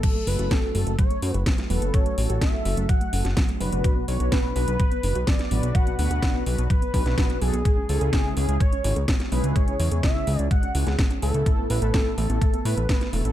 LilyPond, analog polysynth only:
\new Staff \with { instrumentName = "Analog polysynth" } { \time 4/4 \key b \dorian \tempo 4 = 126 r8 <a cis' fis' a'>4 <a cis' fis' a'>8 r8 <a cis' fis' a'>16 r8. <a cis' fis' a'>8~ | <a cis' fis' a'>8 <a cis' fis' a'>4 <a cis' fis' a'>8 r8 <a cis' fis' a'>16 r8. <b, b d' fis' b'>8~ | <b, b d' fis' b'>8 <b, b d' fis' b'>4 <b, b d' fis' b'>8 r8 <b, b d' fis' b'>16 r8. <b, b d' fis' b'>8~ | <b, b d' fis' b'>8 <b, b d' fis' b'>4 <b, b d' fis' b'>8 r8 <b, b d' fis' b'>16 <b, b d' fis' b'>8. <b d' fis' a'>16 r16 |
r8 <cis gis cis' e' gis'>4 <cis gis cis' e' gis'>8 r8 <cis gis cis' e' gis'>16 r8. <cis gis cis' e' gis'>8~ | <cis gis cis' e' gis'>8 <cis gis cis' e' gis'>4 <cis gis cis' e' gis'>8 r8 <cis gis cis' e' gis'>16 r8. <a, a b e' a'>8~ | <a, a b e' a'>8 <a, a b e' a'>4 <a, a b e' a'>8 r8 <a, a b e' a'>16 r8. <a, a b e' a'>8 | }